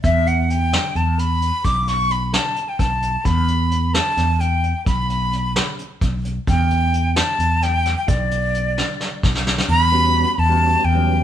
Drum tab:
HH |x-x-x-x-x-x-x-|x-x-x-x-x-x-x-|x-x-x-x-x-x-x-|x-x-x-x-x-x-x-|
SD |------o-------|--o---o-------|------o-o-----|------o-------|
BD |o-------------|o---------o---|o-------------|o---------o---|

HH |x-x-x-x-x-x-x-|x-x-x---------|--------------|
SD |------o---o-o-|------o-o-oooo|--------------|
BD |o-------------|o---------o---|--------------|